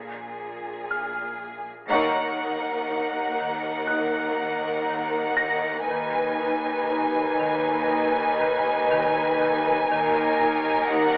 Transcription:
Already playing: double bass section A#1, cello section A#2, violin section G#4, grand piano G#5 G#6
0.91 grand piano F6
1.89 cello section D#2, double bass section D#2, marimba D#3, violin section D#4 A#4 F#5, grand piano C#5 C#6
2.41 marimba D#4
2.90 marimba D#4
3.40 marimba D#3
3.87 marimba D#4, grand piano F#6
4.40 marimba D#3
4.90 marimba D#3
5.37 grand piano A#6
5.42 marimba D#3
5.89 cello section D#2, double bass section D#2, marimba D#3, violin section D#4 B4 G#5
6.41 marimba D#4
6.90 marimba D#4
7.40 marimba D#3
7.91 marimba D#4
8.40 marimba D#3
8.91 marimba D#3
9.42 marimba D#3
9.89 cello section D#2, double bass section D#2, marimba D#3, violin section D#4 A#4
10.41 marimba D#4
10.91 marimba D#4, violin section F#5

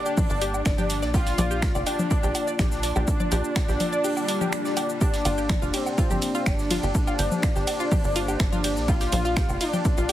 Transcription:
Already playing: analog synth pad A#3 D4 G4 D5, analog synth lead D4
0.06 synth arpeggio sound G4 G5, shaker
0.17 kick, open hi-hat, low conga, shaker
0.30 analog synth bass G1, synth arpeggio sound D5 D6, shaker
0.41 synth arpeggio sound G4 G5, closed hi-hat, open hi-hat, shaker
0.54 low woodblock, shaker
0.65 analog synth bass G1, synth arpeggio sound D5 D6, finger snap, kick, snare, closed hi-hat, shaker
0.78 synth arpeggio sound G4 G5, closed hi-hat, low conga, shaker
0.90 snare, closed hi-hat, open hi-hat, shaker
1.02 analog synth bass A#1, synth arpeggio sound D5 D6, snare, shaker
1.14 analog synth pad A#3 D4 F4, analog synth lead F4, synth arpeggio sound G4 G5, kick, closed hi-hat, low woodblock, shaker
1.26 snare, open hi-hat, shaker
1.38 analog synth bass A#1, synth arpeggio sound D5 D6, closed hi-hat, open hi-hat, low conga, shaker
1.51 synth arpeggio sound G4 G5, shaker
1.62 finger snap, kick, snare, closed hi-hat, shaker
1.75 analog synth bass F1, synth arpeggio sound D5 D6, closed hi-hat, low woodblock, shaker
1.86 analog synth lead D4, synth arpeggio sound G4 G5, closed hi-hat, open hi-hat, shaker
1.99 low conga, shaker
2.11 synth arpeggio sound D5 D6, kick, closed hi-hat, shaker
2.23 analog synth bass A#1, synth arpeggio sound G4 G5, closed hi-hat, shaker
2.35 closed hi-hat, open hi-hat, low woodblock, shaker
2.47 synth arpeggio sound D5 D6, closed hi-hat, shaker
2.59 analog synth bass A#1, analog synth lead D4, synth arpeggio sound G4 G5, finger snap, kick, snare, closed hi-hat, low conga, shaker
2.72 snare, shaker
2.83 synth arpeggio sound D5 D6, snare, closed hi-hat, open hi-hat, shaker
2.96 analog synth bass A#1, synth arpeggio sound G4 G5, low woodblock, shaker
3.07 kick, closed hi-hat, shaker
3.20 synth arpeggio sound D5 D6, low conga, shaker
3.32 analog synth bass A#1, synth arpeggio sound G4 G5, closed hi-hat, open hi-hat, shaker
3.44 shaker
3.56 synth arpeggio sound D5 D6, finger snap, kick, snare, closed hi-hat, open hi-hat, low woodblock, shaker
3.68 analog synth bass A#1, synth arpeggio sound G4 G5, snare, shaker
3.80 closed hi-hat, open hi-hat, low conga, shaker
3.93 synth arpeggio sound D5 D6, shaker
4.04 synth arpeggio sound G4 G5, open hi-hat, swell, shaker
4.17 low woodblock, shaker
4.28 synth arpeggio sound D5 D6, closed hi-hat, open hi-hat, shaker
4.41 synth arpeggio sound G4 G5, low conga, shaker
4.53 finger snap, closed hi-hat, shaker
4.65 synth arpeggio sound D5 D6, snare, shaker
4.77 synth arpeggio sound G4 G5, closed hi-hat, open hi-hat, low woodblock, shaker
4.89 shaker
5.01 analog synth lead D4, synth arpeggio sound G4 G5, analog synth pad G4 D5, kick, closed hi-hat, shaker
5.14 snare, open hi-hat, shaker
5.25 analog synth bass G1, synth arpeggio sound F4 F5, closed hi-hat, open hi-hat, ride, low woodblock, shaker
5.38 synth arpeggio sound G4 G5, shaker
5.49 finger snap, kick, snare, closed hi-hat, low conga, shaker
5.62 analog synth bass F1, synth arpeggio sound F4 F5, closed hi-hat, shaker
5.74 analog synth lead C4, synth arpeggio sound G4 G5, closed hi-hat, open hi-hat, ride, shaker
5.86 low woodblock, shaker
5.98 synth arpeggio sound F4 F5, kick, closed hi-hat, shaker
6.10 analog synth bass G1, synth arpeggio sound G4 G5, closed hi-hat, low conga, shaker
6.22 closed hi-hat, open hi-hat, ride, shaker
6.35 synth arpeggio sound F4 F5, closed hi-hat, shaker
6.46 analog synth bass G1, analog synth lead D4, synth arpeggio sound G4 G5, finger snap, kick, snare, closed hi-hat, low woodblock, shaker
6.59 snare, shaker
6.70 synth arpeggio sound F4 F5, snare, closed hi-hat, open hi-hat, ride, low conga, shaker
6.83 analog synth bass G1, synth arpeggio sound G4 G5, shaker
6.94 analog synth pad C5, kick, closed hi-hat, shaker
7.07 synth arpeggio sound F4 F5, low woodblock, shaker
7.19 analog synth bass G1, synth arpeggio sound G4 G5, closed hi-hat, open hi-hat, ride, shaker
7.32 low conga, shaker
7.42 synth arpeggio sound F4 F5, finger snap, kick, snare, closed hi-hat, shaker
7.56 analog synth bass G1, synth arpeggio sound G4 G5, snare, shaker
7.67 closed hi-hat, open hi-hat, ride, low woodblock, shaker
7.80 synth arpeggio sound F4 F5, shaker
7.91 synth arpeggio sound G4 G5, kick, open hi-hat, low conga, shaker
8.04 analog synth bass G1, shaker
8.15 synth arpeggio sound F4 F5, closed hi-hat, open hi-hat, ride, shaker
8.28 synth arpeggio sound G4 G5, low woodblock, shaker
8.40 analog synth bass G1, finger snap, kick, snare, closed hi-hat, shaker
8.52 synth arpeggio sound F4 F5, closed hi-hat, low conga, shaker
8.64 synth arpeggio sound G4 G5, snare, closed hi-hat, open hi-hat, ride, shaker
8.77 analog synth bass A#1, snare, shaker
8.88 analog synth pad F4 D5, synth arpeggio sound F4 F5, analog synth lead F4, kick, closed hi-hat, low woodblock, shaker
9.01 synth arpeggio sound G4 G5, snare, open hi-hat, shaker
9.12 analog synth bass A#1, closed hi-hat, open hi-hat, ride, low conga, shaker
9.25 synth arpeggio sound F4 F5, shaker
9.36 synth arpeggio sound G4 G5, finger snap, kick, snare, closed hi-hat, shaker
9.49 analog synth bass F1, closed hi-hat, low woodblock, shaker
9.61 analog synth lead D4, synth arpeggio sound F4 F5, closed hi-hat, open hi-hat, ride, shaker
9.73 synth arpeggio sound G4 G5, low conga, shaker
9.85 kick, closed hi-hat, shaker
9.97 analog synth bass A#1, synth arpeggio sound F4 F5, closed hi-hat, shaker

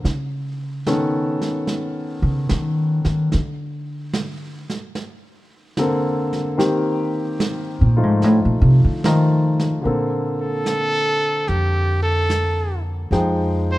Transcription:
0.04 upright bass C#3, brush sweep, snare
0.86 grand piano D#3 B3 C#4 A4, snare
1.42 snare
1.67 brush sweep, snare
2.22 upright bass C#3
2.49 upright bass D#3, snare
3.05 upright bass D#3, snare
3.32 upright bass D3, brush sweep, snare
4.13 snare
4.70 snare
4.95 brush sweep, snare
5.77 grand piano D3 A#3 C4 A4, snare
6.33 snare
6.58 grand piano D#3 A#3 C4 G4, brush sweep, snare
7.40 snare
7.81 upright bass A#2
7.97 grand piano F3 A3 D#4 F4
8.03 upright bass G#2
8.22 upright bass A2, brush sweep, snare
8.45 upright bass A#2
8.61 upright bass C3
8.85 upright bass D3
9.04 upright bass D#3, grand piano F3 A3 D#4 F4, snare
9.60 snare
9.82 upright bass A#2, grand piano D3 A#3
9.86 grand piano C4 A4, brush sweep
10.41 trumpet A4
10.66 snare, hi-hat pedal
11.47 upright bass F2, trumpet G4, brush sweep, snare
12.03 trumpet A4
12.30 snare, hi-hat pedal
13.11 upright bass F2, grand piano F3 G#3 D#4 G5, brush sweep, snare
13.72 trumpet C5

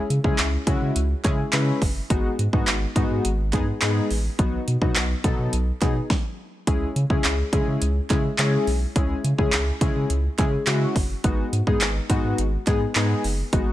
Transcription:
0.10 sub bass C#3, closed hi-hat
0.24 sub bass C#3, synth keys G#3 C#4 E4 G#4, kick
0.38 sub bass C#2, clap, closed hi-hat
0.67 sub bass C#3, synth keys G#3 C#4 E4 F#4, kick, closed hi-hat
0.82 sub bass C#3
0.96 sub bass C#2, closed hi-hat
1.24 sub bass C#3, synth keys G#3 C#4 E4 G#4, kick, clap, closed hi-hat
1.53 sub bass C#3, synth keys G#3 C#4 E4 B4, clap, closed hi-hat
1.82 sub bass F#1, kick, open hi-hat
2.10 sub bass G#1, synth keys G#3 B3 D#4 F#4, kick, closed hi-hat
2.39 sub bass G#2, closed hi-hat
2.53 sub bass G#2, synth keys G#3 B3 D#4 F#4, kick
2.67 sub bass G#1, clap, closed hi-hat
2.96 sub bass G#2, synth keys G#3 B3 D#4 F#4, kick, closed hi-hat
3.10 sub bass G#2
3.25 sub bass G#1, closed hi-hat
3.53 sub bass G#2, synth keys G#3 B3 D#4 G#4, kick, clap, closed hi-hat
3.82 sub bass G#2, synth keys G#3 B3 D#4 G#4, clap, closed hi-hat
4.11 sub bass A1, open hi-hat
4.39 sub bass B1, synth keys F#3 B3 D#4 F#4, kick, closed hi-hat
4.68 sub bass B2, closed hi-hat
4.82 sub bass B2, synth keys F#3 B3 D#4 F#4, kick
4.96 sub bass B1, clap, closed hi-hat
5.24 sub bass B2, synth keys F#3 B3 D#4 A4, kick, closed hi-hat
5.39 sub bass B2
5.53 sub bass B1, closed hi-hat
5.81 sub bass B2, synth keys F#3 B3 D#4 G#4, kick, clap, closed hi-hat
6.10 kick, snare
6.67 sub bass C#2, synth keys G#3 C#4 E4 G#4, kick, closed hi-hat
6.96 sub bass C#3, closed hi-hat
7.10 sub bass C#3, synth keys G#3 C#4 E4 G#4, kick
7.24 sub bass C#2, clap, closed hi-hat
7.53 sub bass C#3, synth keys G#3 C#4 E4 G#4, kick, closed hi-hat
7.67 sub bass C#3
7.82 sub bass C#2, closed hi-hat
8.10 sub bass C#3, synth keys G#3 C#4 E4 G#4, kick, clap, closed hi-hat
8.38 sub bass C#3, synth keys G#3 C#4 E4 G#4, clap, closed hi-hat
8.67 sub bass B1, open hi-hat
8.96 sub bass C#2, synth keys G#3 C#4 E4 G#4, kick, closed hi-hat
9.24 sub bass C#3, closed hi-hat
9.38 sub bass C#3, synth keys G#3 C#4 E4 G#4, kick
9.53 sub bass C#2, clap, closed hi-hat
9.81 sub bass C#3, synth keys G#3 C#4 E4 G#4, kick, closed hi-hat
9.96 sub bass C#3
10.10 sub bass C#2, closed hi-hat
10.38 sub bass C#3, synth keys G#3 C#4 E4 G#4, kick, clap, closed hi-hat
10.67 sub bass C#3, synth keys G#3 C#4 E4 F#4, clap, closed hi-hat
10.96 sub bass F#1, kick, open hi-hat
11.24 sub bass G#1, synth keys G#3 B3 D#4 F#4, kick, closed hi-hat
11.52 sub bass G#2, closed hi-hat
11.67 sub bass G#2, synth keys G#3 B3 D#4 G#4, kick
11.81 sub bass G#1, clap, closed hi-hat
12.10 sub bass G#2, synth keys G#3 B3 D#4 F#4, kick, closed hi-hat
12.24 sub bass G#2
12.38 sub bass G#1, closed hi-hat
12.67 sub bass G#2, synth keys G#3 B3 D#4 G#4, kick, clap, closed hi-hat
12.95 sub bass G#2, synth keys G#3 B3 D#4 G#4, clap, closed hi-hat
13.24 sub bass F#1, open hi-hat
13.53 sub bass G#1, synth keys G#3 B3 D#4 F#4, kick, closed hi-hat

